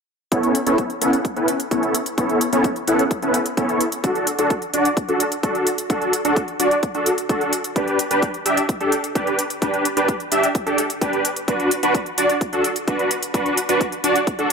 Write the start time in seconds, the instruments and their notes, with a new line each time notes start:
0.32 supersaw synth B3 C#4 E4 A4 C#5, kick, closed hi-hat
0.43 closed hi-hat
0.55 closed hi-hat
0.67 supersaw synth B3 C#4 E4 A4 C#5, closed hi-hat
0.78 kick, closed hi-hat
0.90 closed hi-hat
1.01 supersaw synth B3 C#4 E4 A4 F#5, closed hi-hat
1.13 closed hi-hat
1.25 kick, closed hi-hat
1.36 supersaw synth B3 C#4 E4 A4 B4, closed hi-hat
1.48 closed hi-hat
1.60 closed hi-hat
1.71 supersaw synth B3 C#4 E4 A4 C#5, kick, closed hi-hat
1.83 closed hi-hat
1.95 closed hi-hat
2.06 closed hi-hat
2.18 supersaw synth B3 C#4 E4 A4 C#5, kick, closed hi-hat
2.29 closed hi-hat
2.41 closed hi-hat
2.53 supersaw synth B3 C#4 E4 A4 C#5, closed hi-hat
2.64 kick, closed hi-hat
2.76 closed hi-hat
2.88 supersaw synth B3 C#4 E4 A4 F#5, closed hi-hat
2.99 closed hi-hat
3.11 kick, closed hi-hat
3.22 supersaw synth B3 C#4 E4 A4 B4, closed hi-hat
3.34 closed hi-hat
3.46 closed hi-hat
3.57 supersaw synth B3 C#4 E4 A4 C#5, kick, closed hi-hat
3.69 closed hi-hat
3.81 closed hi-hat
3.92 closed hi-hat
4.04 supersaw synth D4 F#4 A4, kick, closed hi-hat
4.15 closed hi-hat
4.27 closed hi-hat
4.39 supersaw synth D4 F#4 A4, closed hi-hat
4.50 kick, closed hi-hat
4.62 closed hi-hat
4.74 supersaw synth D4 F#4 D5, closed hi-hat
4.85 closed hi-hat
4.97 kick, closed hi-hat
5.08 supersaw synth D4 F#4 A4, closed hi-hat
5.20 closed hi-hat
5.32 closed hi-hat
5.43 supersaw synth D4 F#4 A4, kick, closed hi-hat
5.55 closed hi-hat
5.67 closed hi-hat
5.78 closed hi-hat
5.90 supersaw synth D4 F#4 A4, kick, closed hi-hat
6.02 closed hi-hat
6.13 closed hi-hat
6.25 supersaw synth D4 F#4 A4, closed hi-hat
6.36 kick, closed hi-hat
6.48 closed hi-hat
6.60 supersaw synth D4 F#4 D5, closed hi-hat
6.71 closed hi-hat
6.83 kick, closed hi-hat
6.95 supersaw synth D4 F#4 A4, closed hi-hat
7.06 closed hi-hat
7.18 closed hi-hat
7.29 supersaw synth D4 F#4 A4, kick, closed hi-hat
7.41 closed hi-hat
7.53 closed hi-hat
7.64 closed hi-hat
7.76 supersaw synth D4 G4 B4, kick, closed hi-hat
7.88 closed hi-hat
7.99 closed hi-hat
8.11 supersaw synth D4 G4 B4, closed hi-hat
8.22 kick, closed hi-hat
8.34 closed hi-hat
8.46 supersaw synth D4 G4 E5, closed hi-hat
8.57 closed hi-hat
8.69 kick, closed hi-hat
8.80 supersaw synth D4 G4 A4, closed hi-hat
8.92 closed hi-hat
9.04 closed hi-hat
9.15 supersaw synth D4 G4 B4, kick, closed hi-hat
9.27 closed hi-hat
9.39 closed hi-hat
9.50 closed hi-hat
9.62 supersaw synth D4 G4 B4, kick, closed hi-hat
9.74 closed hi-hat
9.85 closed hi-hat
9.97 supersaw synth D4 G4 B4, closed hi-hat
10.08 kick, closed hi-hat
10.20 closed hi-hat
10.32 supersaw synth D4 G4 E5, closed hi-hat
10.43 closed hi-hat
10.55 kick, closed hi-hat
10.67 supersaw synth D4 G4 A4, closed hi-hat
10.78 closed hi-hat
10.90 closed hi-hat
11.01 supersaw synth D4 G4 B4, kick, closed hi-hat
11.13 closed hi-hat
11.25 closed hi-hat
11.36 closed hi-hat
11.48 supersaw synth D4 F#4 B4, kick, closed hi-hat
11.60 closed hi-hat
11.71 closed hi-hat
11.83 supersaw synth D4 F#4 B4, closed hi-hat
11.95 kick, closed hi-hat
12.06 closed hi-hat
12.18 supersaw synth D4 F#4 D5, closed hi-hat
12.29 closed hi-hat
12.41 kick, closed hi-hat
12.53 supersaw synth D4 F#4 A4, closed hi-hat
12.64 closed hi-hat
12.76 closed hi-hat
12.88 supersaw synth D4 F#4 B4, kick, closed hi-hat
12.99 closed hi-hat
13.11 closed hi-hat
13.23 closed hi-hat
13.34 supersaw synth D4 F#4 B4, kick, closed hi-hat
13.46 closed hi-hat
13.57 closed hi-hat
13.69 supersaw synth D4 F#4 B4, closed hi-hat
13.81 kick, closed hi-hat
13.92 closed hi-hat
14.04 supersaw synth D4 F#4 D5, closed hi-hat
14.16 closed hi-hat
14.27 kick, closed hi-hat
14.39 supersaw synth D4 F#4 A4, closed hi-hat